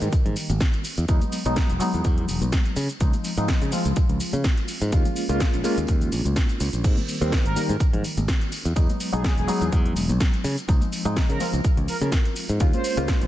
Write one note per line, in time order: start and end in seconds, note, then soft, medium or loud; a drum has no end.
0.00 0.10 G#2 medium
0.00 0.83 D#3 medium
0.00 0.83 G3 medium
0.00 0.83 A#3 medium
0.00 0.84 D#4 medium
0.00 closed hi-hat soft
0.00 tambourine soft
0.00 cabasa soft
0.12 muted fingered electric bass stroke soft
0.12 kick loud
0.12 closed hi-hat medium
0.12 tambourine soft
0.12 cabasa soft
0.26 0.34 G#2 medium
0.26 closed hi-hat soft
0.26 low conga medium
0.36 open hi-hat loud
0.36 tambourine medium
0.36 cabasa medium
0.49 0.58 G#1 medium
0.49 closed hi-hat soft
0.49 tambourine soft
0.49 high conga medium
0.49 cabasa soft
0.61 kick loud
0.61 snare loud
0.61 closed hi-hat medium
0.61 tambourine soft
0.61 cabasa soft
0.73 closed hi-hat soft
0.73 tambourine soft
0.84 open hi-hat loud
0.84 tambourine medium
0.84 cabasa medium
0.97 1.06 E2 medium
0.97 closed hi-hat soft
0.97 tambourine soft
0.97 cabasa soft
1.08 1.19 E2 medium
1.08 1.42 F#3 medium
1.08 1.43 G#3 medium
1.08 1.43 B3 medium
1.08 1.43 D#4 loud
1.08 kick loud
1.08 closed hi-hat medium
1.08 tambourine medium
1.08 cabasa soft
1.21 closed hi-hat soft
1.21 tambourine soft
1.21 high conga medium
1.21 cabasa soft
1.32 open hi-hat medium
1.32 tambourine medium
1.32 cabasa medium
1.45 1.54 B1 loud
1.45 1.78 F#3 medium
1.45 1.78 G#3 medium
1.45 1.78 B3 medium
1.45 1.78 D#4 loud
1.45 closed hi-hat soft
1.45 tambourine soft
1.45 cabasa soft
1.56 kick loud
1.56 snare loud
1.56 closed hi-hat medium
1.56 tambourine medium
1.56 cabasa soft
1.70 1.78 E1 medium
1.70 closed hi-hat soft
1.70 cabasa soft
1.80 2.75 F#3 medium
1.80 2.75 G#3 medium
1.80 2.76 B3 medium
1.80 2.76 D#4 loud
1.80 open hi-hat loud
1.80 tambourine medium
1.80 high conga medium
1.80 cabasa medium
1.94 2.03 E2 medium
1.94 closed hi-hat soft
1.94 tambourine soft
1.94 cabasa soft
2.05 2.24 E2 loud
2.05 kick loud
2.05 closed hi-hat medium
2.05 tambourine medium
2.05 cabasa soft
2.18 closed hi-hat soft
2.18 low conga medium
2.29 2.39 E1 medium
2.29 open hi-hat loud
2.29 tambourine medium
2.29 cabasa medium
2.41 2.50 B1 medium
2.41 closed hi-hat soft
2.41 tambourine soft
2.41 high conga medium
2.41 cabasa soft
2.52 kick loud
2.52 snare loud
2.52 closed hi-hat medium
2.52 tambourine soft
2.52 cabasa soft
2.66 closed hi-hat soft
2.66 tambourine soft
2.76 2.87 C#3 medium
2.76 open hi-hat medium
2.76 tambourine medium
2.76 cabasa medium
2.89 closed hi-hat soft
2.89 tambourine soft
2.89 cabasa soft
3.00 3.11 C#2 loud
3.00 3.35 F3 medium
3.00 3.35 G#3 medium
3.00 3.35 C4 medium
3.00 3.35 D#4 medium
3.00 kick loud
3.00 closed hi-hat medium
3.00 tambourine medium
3.00 cabasa soft
3.13 closed hi-hat soft
3.13 tambourine soft
3.13 high conga medium
3.13 cabasa soft
3.25 open hi-hat medium
3.25 tambourine medium
3.25 cabasa medium
3.37 3.46 G#2 loud
3.37 3.70 F3 medium
3.37 3.70 G#3 medium
3.37 3.70 C4 medium
3.37 3.70 D#4 medium
3.37 closed hi-hat soft
3.37 tambourine soft
3.37 cabasa soft
3.48 kick loud
3.48 snare loud
3.48 closed hi-hat medium
3.48 tambourine soft
3.48 cabasa soft
3.62 3.70 C#3 medium
3.62 closed hi-hat soft
3.62 cabasa soft
3.72 4.90 F3 medium
3.72 4.90 G#3 medium
3.72 4.90 C4 medium
3.72 4.90 F4 medium
3.72 open hi-hat loud
3.72 tambourine medium
3.72 high conga medium
3.72 cabasa medium
3.85 3.94 C#2 medium
3.85 closed hi-hat soft
3.85 tambourine soft
3.85 cabasa soft
3.96 kick loud
3.96 closed hi-hat medium
3.96 tambourine medium
3.96 cabasa soft
4.09 4.18 C#2 medium
4.09 closed hi-hat soft
4.09 low conga medium
4.20 open hi-hat loud
4.20 tambourine loud
4.20 cabasa medium
4.33 4.42 C#3 medium
4.33 closed hi-hat soft
4.33 tambourine soft
4.33 high conga medium
4.33 cabasa soft
4.44 kick loud
4.44 snare loud
4.44 closed hi-hat medium
4.44 tambourine soft
4.44 cabasa soft
4.57 closed hi-hat soft
4.57 tambourine soft
4.68 open hi-hat medium
4.68 tambourine medium
4.68 cabasa medium
4.81 4.90 G#2 medium
4.81 closed hi-hat soft
4.81 tambourine soft
4.81 cabasa soft
4.92 5.03 D#2 medium
4.92 5.27 G#3 medium
4.92 5.27 A#3 medium
4.92 5.27 C#4 medium
4.92 5.27 F4 loud
4.92 kick loud
4.92 closed hi-hat medium
4.92 tambourine medium
4.92 cabasa soft
5.05 closed hi-hat soft
5.05 tambourine soft
5.05 high conga medium
5.05 low conga medium
5.05 cabasa soft
5.16 open hi-hat loud
5.16 tambourine medium
5.16 cabasa medium
5.29 5.38 C#2 loud
5.29 5.62 G#3 medium
5.29 5.62 A#3 medium
5.29 5.62 C#4 medium
5.29 5.62 F4 loud
5.29 closed hi-hat soft
5.29 tambourine soft
5.29 cabasa soft
5.40 kick loud
5.40 snare loud
5.40 closed hi-hat medium
5.40 tambourine medium
5.40 cabasa soft
5.54 5.62 A#1 medium
5.54 closed hi-hat soft
5.54 tambourine soft
5.54 cabasa soft
5.64 6.81 G#3 medium
5.64 6.82 A#3 medium
5.64 6.82 C#4 medium
5.64 6.82 F4 loud
5.64 open hi-hat loud
5.64 tambourine loud
5.64 high conga medium
5.64 cabasa medium
5.77 5.86 D#2 medium
5.77 closed hi-hat soft
5.77 tambourine soft
5.77 cabasa soft
5.87 6.08 D#2 medium
5.87 kick loud
5.87 closed hi-hat medium
5.87 tambourine medium
5.87 cabasa soft
6.01 closed hi-hat soft
6.01 tambourine soft
6.01 low conga medium
6.01 cabasa soft
6.12 6.23 A#1 medium
6.12 open hi-hat loud
6.12 tambourine medium
6.12 cabasa medium
6.25 6.34 C#2 medium
6.25 closed hi-hat soft
6.25 tambourine soft
6.25 high conga medium
6.25 cabasa soft
6.36 kick loud
6.36 snare loud
6.36 closed hi-hat medium
6.36 tambourine medium
6.36 cabasa soft
6.49 closed hi-hat soft
6.49 tambourine soft
6.49 cabasa soft
6.60 6.71 C#2 loud
6.60 open hi-hat loud
6.60 tambourine medium
6.60 cabasa medium
6.73 6.82 A#1 medium
6.73 closed hi-hat soft
6.73 tambourine soft
6.73 cabasa soft
6.84 6.95 G#2 medium
6.84 7.18 D#3 medium
6.84 7.18 G3 medium
6.84 7.18 A#3 medium
6.84 7.19 C4 medium
6.84 kick loud
6.84 closed hi-hat medium
6.84 tambourine medium
6.84 crash medium
6.84 cabasa soft
6.97 closed hi-hat soft
6.97 tambourine soft
6.97 high conga medium
6.97 cabasa soft
7.08 open hi-hat loud
7.08 tambourine loud
7.08 cabasa medium
7.21 7.30 D#2 loud
7.21 7.54 D#3 medium
7.21 7.54 G3 medium
7.21 7.54 A#3 medium
7.21 7.54 C4 medium
7.21 closed hi-hat soft
7.21 tambourine soft
7.21 cabasa soft
7.32 kick loud
7.32 snare loud
7.32 closed hi-hat medium
7.32 tambourine soft
7.32 cabasa soft
7.45 7.54 G#1 medium
7.45 7.62 A#4 medium
7.45 closed hi-hat soft
7.45 cabasa soft
7.56 8.51 D#3 medium
7.56 8.51 G3 medium
7.56 8.51 A#3 medium
7.56 8.52 D#4 medium
7.56 open hi-hat loud
7.56 tambourine loud
7.56 high conga medium
7.56 cabasa medium
7.69 7.78 G#2 medium
7.69 closed hi-hat soft
7.69 tambourine soft
7.69 cabasa soft
7.80 muted fingered electric bass stroke soft
7.80 kick loud
7.80 closed hi-hat medium
7.80 tambourine medium
7.80 cabasa soft
7.93 8.02 G#2 medium
7.93 closed hi-hat soft
7.93 low conga medium
8.04 open hi-hat loud
8.04 tambourine medium
8.04 cabasa medium
8.17 8.26 G#1 medium
8.17 closed hi-hat soft
8.17 tambourine soft
8.17 high conga medium
8.17 cabasa soft
8.28 kick loud
8.28 snare loud
8.28 closed hi-hat medium
8.28 cabasa soft
8.41 closed hi-hat soft
8.41 tambourine soft
8.52 open hi-hat loud
8.52 tambourine loud
8.52 cabasa medium
8.65 8.74 E2 medium
8.65 closed hi-hat soft
8.65 tambourine soft
8.65 cabasa soft
8.76 8.87 E2 medium
8.76 9.10 F#3 medium
8.76 9.10 G#3 medium
8.76 9.10 B3 medium
8.76 9.11 D#4 loud
8.76 kick loud
8.76 closed hi-hat medium
8.76 tambourine medium
8.76 cabasa soft
8.90 closed hi-hat soft
8.90 tambourine soft
8.90 high conga medium
8.90 cabasa soft
9.00 open hi-hat loud
9.00 tambourine medium
9.00 cabasa medium
9.13 9.22 B1 loud
9.13 9.45 F#3 medium
9.13 9.46 G#3 medium
9.13 9.46 B3 medium
9.13 9.46 D#4 loud
9.13 9.21 G#4 medium
9.13 tambourine soft
9.13 cabasa soft
9.24 9.33 G#4 medium
9.24 kick loud
9.24 snare loud
9.24 closed hi-hat medium
9.24 tambourine medium
9.24 cabasa soft
9.37 9.46 E1 medium
9.37 9.73 G#4 medium
9.37 closed hi-hat soft
9.37 cabasa soft
9.47 10.43 F#3 medium
9.47 10.43 G#3 medium
9.47 10.43 B3 medium
9.47 10.44 D#4 loud
9.47 open hi-hat loud
9.47 tambourine medium
9.47 high conga medium
9.47 cabasa medium
9.61 9.70 E2 medium
9.61 closed hi-hat soft
9.61 tambourine soft
9.61 cabasa soft
9.72 9.92 E2 loud
9.72 kick loud
9.72 closed hi-hat medium
9.72 tambourine medium
9.72 cabasa soft
9.85 closed hi-hat soft
9.85 low conga medium
9.96 10.07 E1 medium
9.96 open hi-hat loud
9.96 tambourine medium
9.96 cabasa medium
10.09 10.18 B1 medium
10.09 closed hi-hat soft
10.09 tambourine soft
10.09 high conga medium
10.09 cabasa soft
10.20 kick loud
10.20 snare loud
10.20 closed hi-hat medium
10.20 cabasa soft
10.34 closed hi-hat soft
10.34 tambourine soft
10.44 10.55 C#3 medium
10.44 open hi-hat loud
10.44 tambourine medium
10.44 cabasa medium
10.58 closed hi-hat soft
10.58 tambourine soft
10.58 cabasa soft
10.68 10.79 C#2 medium
10.68 11.02 F3 medium
10.68 11.02 G#3 medium
10.68 11.02 C4 medium
10.68 11.03 D#4 medium
10.68 kick loud
10.68 closed hi-hat medium
10.68 tambourine soft
10.68 cabasa soft
10.81 closed hi-hat soft
10.81 tambourine soft
10.81 high conga medium
10.81 cabasa soft
10.93 open hi-hat loud
10.93 tambourine medium
10.93 cabasa medium
11.05 11.14 G#2 loud
11.05 11.38 F3 medium
11.05 11.38 G#3 medium
11.05 11.38 C4 medium
11.05 11.38 D#4 medium
11.05 cabasa soft
11.16 kick loud
11.16 snare loud
11.16 closed hi-hat medium
11.16 tambourine soft
11.16 cabasa soft
11.29 11.38 C#3 medium
11.29 11.47 A#4 medium
11.29 closed hi-hat soft
11.29 cabasa soft
11.40 12.58 F3 medium
11.40 12.58 G#3 medium
11.40 12.58 C4 medium
11.40 12.59 F4 medium
11.40 open hi-hat loud
11.40 tambourine medium
11.40 high conga medium
11.40 cabasa medium
11.53 11.62 C#2 medium
11.53 closed hi-hat soft
11.53 tambourine soft
11.53 cabasa soft
11.64 kick loud
11.64 closed hi-hat medium
11.64 tambourine soft
11.64 cabasa soft
11.77 11.86 C#2 medium
11.77 closed hi-hat soft
11.77 low conga medium
11.88 11.97 A#4 medium
11.88 open hi-hat loud
11.88 tambourine medium
11.88 cabasa medium
12.01 12.10 C#3 loud
12.01 12.09 A#4 medium
12.01 closed hi-hat soft
12.01 tambourine soft
12.01 high conga medium
12.01 cabasa soft
12.12 kick loud
12.12 snare loud
12.12 closed hi-hat medium
12.12 tambourine soft
12.12 cabasa soft
12.25 closed hi-hat soft
12.25 tambourine soft
12.36 open hi-hat loud
12.36 tambourine medium
12.36 cabasa medium
12.49 12.58 G#2 medium
12.49 closed hi-hat soft
12.49 tambourine soft
12.49 cabasa soft
12.60 12.71 D#2 loud
12.60 12.95 G#3 medium
12.60 12.95 A#3 medium
12.60 12.95 C#4 medium
12.60 12.95 F4 loud
12.60 kick loud
12.60 closed hi-hat medium
12.60 tambourine soft
12.60 cabasa soft
12.73 13.27 C5 medium
12.73 closed hi-hat soft
12.73 tambourine soft
12.73 high conga medium
12.73 cabasa soft
12.84 open hi-hat loud
12.84 tambourine medium
12.84 cabasa medium
12.97 13.06 C#2 loud
12.97 13.27 G#3 medium
12.97 13.27 A#3 medium
12.97 13.27 C#4 medium
12.97 13.27 F4 loud
12.97 closed hi-hat soft
12.97 tambourine soft
12.97 cabasa soft
13.08 kick loud
13.08 snare loud
13.08 closed hi-hat medium
13.08 tambourine soft
13.08 cabasa soft
13.21 13.27 A#1 medium
13.21 closed hi-hat soft
13.21 cabasa soft